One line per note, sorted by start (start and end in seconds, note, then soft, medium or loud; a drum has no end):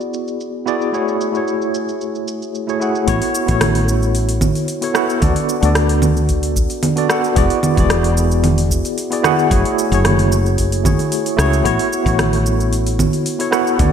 0.00 0.66 B3 medium
0.00 0.66 E4 medium
0.00 0.67 F#4 medium
0.00 0.68 G#4 medium
0.00 0.68 D5 medium
0.00 cabasa soft
0.14 cabasa medium
0.28 cabasa soft
0.40 cabasa soft
0.66 0.90 B3 medium
0.66 0.90 E4 medium
0.66 0.91 F#4 medium
0.66 0.91 G#4 medium
0.66 0.91 D5 loud
0.66 cabasa medium
0.81 cabasa soft
0.92 1.30 A3 medium
0.92 1.31 E4 medium
0.92 1.31 F#4 medium
0.92 1.31 G#4 medium
0.92 1.32 C#5 medium
0.92 cabasa soft
1.08 cabasa soft
1.21 cabasa medium
1.32 2.64 A3 medium
1.32 2.65 E4 medium
1.32 2.66 F#4 medium
1.32 2.66 G#4 medium
1.32 cabasa soft
1.37 2.67 C#5 medium
1.48 cabasa soft
1.62 cabasa soft
1.74 cabasa medium
1.89 cabasa soft
2.01 cabasa soft
2.15 cabasa soft
2.28 cabasa medium
2.42 cabasa soft
2.55 cabasa soft
2.67 2.77 A3 medium
2.67 2.78 E4 medium
2.67 2.78 F#4 medium
2.67 2.78 G#4 medium
2.67 2.79 C#5 medium
2.67 cabasa soft
2.79 3.04 A3 medium
2.79 3.05 E4 medium
2.79 3.05 F#4 medium
2.79 3.05 G#4 medium
2.79 3.06 F#5 medium
2.79 cabasa medium
2.95 cabasa soft
3.06 3.20 A1 medium
3.06 3.45 B3 medium
3.06 3.45 E4 medium
3.06 3.45 F#4 medium
3.06 3.46 A4 medium
3.06 3.46 C#5 medium
3.06 kick loud
3.06 open hi-hat medium
3.06 cabasa soft
3.22 open hi-hat soft
3.35 cabasa medium
3.46 4.52 A1 loud
3.46 4.79 B3 medium
3.46 4.79 E4 medium
3.46 4.80 F#4 medium
3.46 4.80 A4 medium
3.46 kick loud
3.46 open hi-hat soft
3.46 cabasa soft
3.51 4.81 C#5 medium
3.61 cross-stick medium
3.61 open hi-hat medium
3.61 low conga medium
3.61 cabasa soft
3.75 open hi-hat soft
3.88 cabasa medium
4.03 cabasa soft
4.15 open hi-hat medium
4.15 cabasa soft
4.29 open hi-hat soft
4.29 cabasa soft
4.41 kick medium
4.41 low conga medium
4.41 cabasa medium
4.55 open hi-hat soft
4.55 cabasa soft
4.68 open hi-hat medium
4.68 cabasa soft
4.81 4.92 B3 medium
4.81 4.92 E4 medium
4.81 4.92 F#4 medium
4.81 4.93 A4 medium
4.81 4.93 C#5 medium
4.81 open hi-hat soft
4.94 5.18 B3 medium
4.94 5.19 E4 medium
4.94 5.19 F#4 medium
4.94 5.19 A4 medium
4.94 5.20 F#5 medium
4.94 cross-stick medium
4.94 cabasa medium
5.10 cabasa soft
5.21 5.34 D2 medium
5.21 5.59 B3 medium
5.21 5.59 D4 medium
5.21 5.60 F#4 medium
5.21 5.60 A4 medium
5.21 5.60 D5 loud
5.21 kick loud
5.21 open hi-hat medium
5.21 low conga medium
5.21 cabasa soft
5.36 open hi-hat soft
5.49 cabasa medium
5.60 6.66 D2 loud
5.60 6.93 B3 medium
5.60 6.93 D4 medium
5.60 6.94 F#4 medium
5.60 6.95 A4 medium
5.60 open hi-hat soft
5.60 cabasa soft
5.65 6.95 D5 medium
5.75 cross-stick medium
5.75 open hi-hat medium
5.75 cabasa soft
5.89 open hi-hat soft
6.02 low conga medium
6.02 cabasa medium
6.17 cabasa soft
6.29 kick medium
6.29 open hi-hat medium
6.29 cabasa soft
6.43 open hi-hat soft
6.43 cabasa soft
6.56 kick loud
6.56 cabasa medium
6.70 open hi-hat soft
6.70 cabasa soft
6.83 open hi-hat medium
6.83 low conga medium
6.83 cabasa soft
6.96 7.06 B3 medium
6.96 7.06 D4 medium
6.96 7.07 F#4 medium
6.96 7.07 A4 medium
6.96 7.07 D5 medium
6.96 open hi-hat soft
7.09 7.33 B3 medium
7.09 7.33 D4 medium
7.09 7.34 F#4 medium
7.09 7.34 A4 medium
7.09 7.34 F#5 medium
7.09 cross-stick medium
7.09 cabasa medium
7.24 cabasa soft
7.36 7.48 E1 medium
7.36 7.74 B3 medium
7.36 7.74 E4 medium
7.36 7.74 F#4 medium
7.36 7.74 G#4 medium
7.36 7.75 D5 loud
7.36 kick loud
7.36 open hi-hat medium
7.36 cabasa soft
7.50 open hi-hat soft
7.63 low conga medium
7.63 cabasa medium
7.75 8.81 E1 loud
7.75 9.07 B3 medium
7.75 9.08 E4 medium
7.75 9.09 F#4 medium
7.75 9.09 G#4 medium
7.75 kick loud
7.75 open hi-hat soft
7.75 cabasa soft
7.80 9.10 D5 medium
7.90 cross-stick medium
7.90 open hi-hat medium
7.90 cabasa soft
8.04 open hi-hat soft
8.17 cabasa medium
8.31 cabasa soft
8.44 open hi-hat medium
8.44 low conga medium
8.44 cabasa soft
8.58 open hi-hat soft
8.58 cabasa soft
8.71 kick medium
8.71 cabasa medium
8.85 open hi-hat soft
8.85 cabasa soft
8.98 open hi-hat medium
8.98 cabasa soft
9.10 9.21 B3 medium
9.10 9.21 E4 medium
9.10 9.21 F#4 medium
9.10 9.22 G#4 medium
9.10 9.22 D5 medium
9.10 open hi-hat soft
9.23 9.47 B3 medium
9.23 9.48 E4 medium
9.23 9.48 F#4 medium
9.23 9.48 G#4 medium
9.23 9.49 F#5 loud
9.23 cross-stick medium
9.23 low conga medium
9.23 cabasa medium
9.39 cabasa soft
9.50 9.63 F#1 medium
9.50 9.88 A3 medium
9.50 9.88 E4 medium
9.50 9.88 F#4 medium
9.50 9.89 G#4 medium
9.50 9.89 C#5 loud
9.50 kick loud
9.50 open hi-hat medium
9.50 cabasa soft
9.65 open hi-hat soft
9.79 cabasa medium
9.89 10.95 F#1 loud
9.89 10.81 A3 medium
9.89 10.82 E4 medium
9.89 10.82 F#4 medium
9.89 10.83 G#4 medium
9.89 open hi-hat soft
9.89 cabasa soft
9.94 10.84 C#5 medium
10.05 cross-stick medium
10.05 open hi-hat medium
10.05 low conga medium
10.05 cabasa soft
10.19 open hi-hat soft
10.32 cabasa medium
10.46 cabasa soft
10.58 kick medium
10.58 open hi-hat medium
10.58 cabasa soft
10.72 open hi-hat soft
10.72 cabasa soft
10.84 11.35 A3 medium
10.84 11.35 E4 medium
10.84 11.35 F#4 medium
10.84 11.36 G#4 medium
10.84 11.36 C#5 medium
10.84 kick loud
10.84 low conga medium
10.84 cabasa medium
10.99 open hi-hat soft
10.99 cabasa soft
11.12 open hi-hat medium
11.12 cabasa soft
11.26 open hi-hat soft
11.26 cabasa soft
11.37 11.61 C#2 medium
11.37 11.61 A3 loud
11.37 11.62 E4 medium
11.37 11.62 F#4 medium
11.37 11.62 G#4 medium
11.37 11.63 C#5 loud
11.37 cross-stick medium
11.37 cabasa medium
11.53 cabasa soft
11.64 11.77 A1 medium
11.64 12.02 B3 medium
11.64 12.02 E4 medium
11.64 12.03 F#4 medium
11.64 12.03 A4 medium
11.64 12.03 C#5 loud
11.64 kick loud
11.64 open hi-hat medium
11.64 cabasa soft
11.79 open hi-hat soft
11.93 cabasa medium
12.04 13.09 A1 medium
12.04 13.36 B3 medium
12.04 13.37 E4 medium
12.04 13.37 F#4 medium
12.04 13.38 A4 medium
12.04 kick loud
12.04 open hi-hat soft
12.04 cabasa soft
12.09 13.39 C#5 medium
12.19 cross-stick medium
12.19 open hi-hat medium
12.19 low conga medium
12.19 cabasa soft
12.33 open hi-hat soft
12.46 cabasa medium
12.60 cabasa soft
12.73 open hi-hat medium
12.73 cabasa soft
12.87 open hi-hat soft
12.87 cabasa soft
12.99 kick medium
12.99 low conga medium
12.99 cabasa medium
13.13 open hi-hat soft
13.13 cabasa soft
13.26 open hi-hat medium
13.26 cabasa soft
13.38 13.49 B3 medium
13.38 13.49 E4 medium
13.38 13.50 F#4 medium
13.38 13.50 A4 medium
13.38 13.50 C#5 medium
13.38 open hi-hat soft
13.51 13.75 B3 medium
13.51 13.76 E4 medium
13.51 13.76 F#4 medium
13.51 13.76 A4 medium
13.51 13.77 F#5 medium
13.51 cross-stick medium
13.51 cabasa medium
13.67 cabasa soft
13.78 13.91 D2 loud
13.78 13.92 B3 medium
13.78 13.92 D4 medium
13.78 13.92 F#4 medium
13.78 13.92 A4 medium
13.78 13.92 D5 medium
13.78 kick loud
13.78 open hi-hat medium
13.78 low conga medium
13.78 cabasa soft